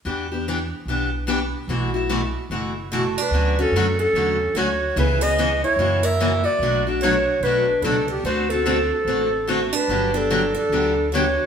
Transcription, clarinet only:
X:1
M:4/4
L:1/8
Q:"Swing" 1/4=146
K:D
V:1 name="Clarinet"
z8 | z6 F B- | B A2 A3 c2 | B _e2 c2 =e2 d- |
d z c2 B2 A G | =c A4- A F B- | B A2 A3 c2 |]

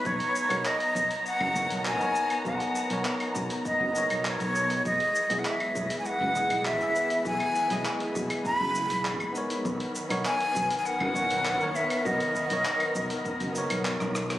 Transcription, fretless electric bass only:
X:1
M:4/4
L:1/16
Q:1/4=100
K:B
V:1 name="Fretless electric bass" clef=bass
B,,, z2 B,,, z2 B,,, z2 F,,,2 B,,,2 F,,, z2 | B,,, z2 B,,, z2 B,,, z2 F,,,2 B,,,2 B,,,3 | B,,, z2 B,,, z2 B,,, z2 F,,,2 B,,,2 F,,, z2 | B,,, z2 B,,, z2 B,,, z2 F,,,2 B,,,2 F,,, z2 |
B,,, z2 B,,, z2 B,,, z2 F,,,2 B,,,2 F,,, z2 | B,,, z2 B,,, z2 B,,, z2 F,,,2 B,,,2 B,,,3 |]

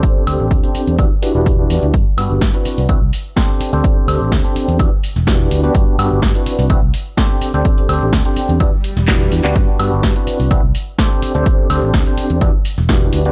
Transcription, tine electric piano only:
X:1
M:4/4
L:1/16
Q:1/4=126
K:Dmix
V:1 name="Tine electric piano"
[CDGAc]2 [CDGAc]3 [CDGAc]3 [DEFGB] z [DEFGB] [DEFGB]2 [DEFGB]3 | z2 [B,DFGB]3 [CDEFB]3 [CDEFB] z3 [CDGAc]3 [CDGAc]- | [CDGAc]2 [CDGAc]3 [CDGAc]3 [DEFGB] z3 [DEFGB]3 [B,DFGB]- | [B,DFGB]2 [B,DFGB]3 [CDEFB]3 [CDEFB] z3 [CDGAc]3 [CDGAc]- |
[CDGAc]2 [CDGAc]3 [CDGAc]3 [DEFGB] z3 [DEFGB]3 [B,DFGB]- | [B,DFGB]2 [B,DFGB]3 [CDEFB]3 [CDEFB] z3 [CDGAc]3 [CDGAc]- | [CDGAc]2 [CDGAc]3 [CDGAc]3 [DEFGB] z3 [DEFGB]3 [B,DFGB] |]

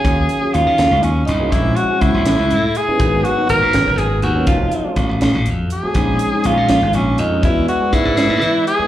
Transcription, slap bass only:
X:1
M:6/8
L:1/16
Q:3/8=81
K:Ebdor
V:1 name="Slap bass" clef=bass
E,,2 z2 E,, E, E,, D,, E,,2 C,,2 | B,,,2 z2 D,, B,,, =A,,, ^C,, =A,,2 z2 | A,,,2 z2 A,,, A,, A,,, G,,, A,,,2 E,,2 | F,,,2 z2 =A,,, A,,, A,,, A,,, F,,2 z2 |
B,,,2 z2 B,,, B,, B,,, A,,, B,,,2 F,,2 | =E,,2 z2 ^G,, G,, G,, G,, =E,2 z2 |]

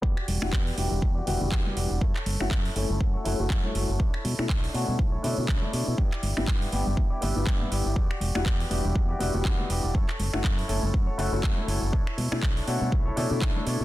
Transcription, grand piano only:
X:1
M:4/4
L:1/16
Q:"Swing 16ths" 1/4=121
K:Edor
V:1 name="Grand piano"
z3 [G,DEF] z2 [G,DEG]2 z2 [G,DEF] [G,DEF]2 [G,DEf]3 | z3 [A,CEF] z2 [A,CEA]2 F2 [A,CEF] [A,CEF]2 [A,CEF]3 | z3 [A,CDE] z2 [A,CDF]2 [CDE]2 [A,CDE] [A,CDE]2 [A,DEc]3 | z3 [G,B,DE] z2 [G,B,DG]2 [G,B,E]2 [G,B,DE] [G,B,DE]2 [G,B,DE]3 |
z3 [G,DEF] z2 [G,DEG]2 z2 [G,DEF] [G,DEF]2 [G,DEf]3 | z3 [A,CEF] z2 [A,CEA]2 [A,CEF]2 [A,CEF] [A,CEF]2 [A,CEF]3 | z3 [A,CDE] z2 [A,CDF]2 A,2 [A,CDE] [A,CDE]2 [A,DEc]3 |]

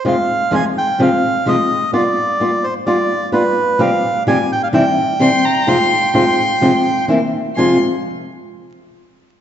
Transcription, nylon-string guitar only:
X:1
M:4/4
L:1/8
Q:1/4=128
K:Fm
V:1 name="Nylon-string guitar" clef=bass
[F,,C,F,A,CF] z [F,,C,F,A,CF] z [F,,C,F,A,CF] z [F,,C,F,A,CF] z | [G,=B,F] z [G,B,F] z [G,B,F] z [G,B,F] z | [C,F,G,CG] z [C,F,G,CG] z [C,=E,G,C=E] z [C,E,G,CE] z | [F,,C,F,A,CF] z [F,,C,F,A,CF] z [F,,C,F,A,CF] z [C,=E,B,C=E] z |
[F,,C,F,A,CF] z6 z |]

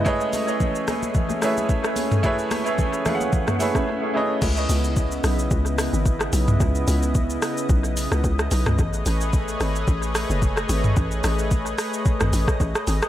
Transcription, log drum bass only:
X:1
M:4/4
L:1/16
Q:"Swing 16ths" 1/4=110
K:C#m
V:1 name="Log drum bass" clef=bass
z16 | z16 | C,,2 C,,4 B,,,2 C,,3 G,,,3 B,,,2 | C,,2 C,,4 z2 B,,,3 C,, C,,2 B,,, C,, |
A,,,2 A,,,4 G,,,2 A,,,3 F,,,3 G,,,2 | A,,,2 A,,,4 z3 G,,, A,,, z A,,, z G,,, z |]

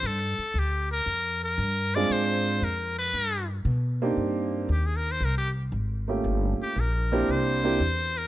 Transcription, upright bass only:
X:1
M:4/4
L:1/8
Q:"Swing" 1/4=116
K:Gm
V:1 name="Upright bass" clef=bass
G,, z D,,2 F,,2 G,,2 | _A,,2 F,,2 G,,2 =B,,2 | [K:Gphr] G,,2 E,,2 C,,2 A,,,2 | G,,, z B,,,2 C,,2 =E,,2 |]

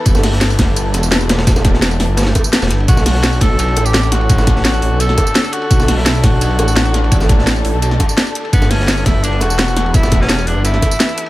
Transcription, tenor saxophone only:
X:1
M:4/4
L:1/16
Q:1/4=170
K:Bm
V:1 name="Tenor saxophone"
z16 | z16 | F2 F4 A4- A G3 F2- | F4 F4 A6 F2- |
F3 E3 F8- F2- | F6 z8 z2 | B,2 C4 E2 D2 F6 | E3 C3 D2 E8 |]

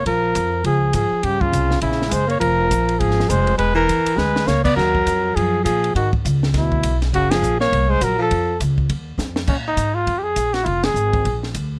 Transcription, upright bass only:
X:1
M:4/4
L:1/8
Q:"Swing" 1/4=204
K:Bbm
V:1 name="Upright bass" clef=bass
B,,,2 F,,2 D,,2 A,, z | =G,,2 C,,2 B,,,2 _G,,,2 | F,,,2 B,,,2 A,,,2 F,,,2 | =E,,,2 =E,, z =D,,2 _D,,2 |
E,,2 F,,2 G,,2 B,,2 | A,,2 D,,2 =D,,2 =B,,,2 | G,,,2 B,,,2 C,,2 B,,,2 | F,,2 D,,2 E,,2 F,,2 |
B,,2 A,,2 F,,2 B,,,2 | F,,,2 A,,,2 B,,,2 =D,,2 |]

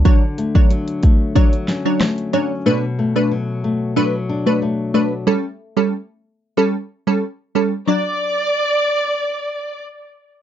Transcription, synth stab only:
X:1
M:4/4
L:1/16
Q:1/4=92
K:D
V:1 name="Synth stab"
[F,Dc] z2 [F,Dc] z4 [F,Dc] z2 [F,Dc] z2 [F,Dc] z | [A,DB] z2 [A,DB] z4 [A,DB] z2 [A,DB] z2 [A,DB] z | [G,CA] z2 [G,CA] z4 [G,CA] z2 [G,CA] z2 [G,CA] z | [F,Dd]16 |]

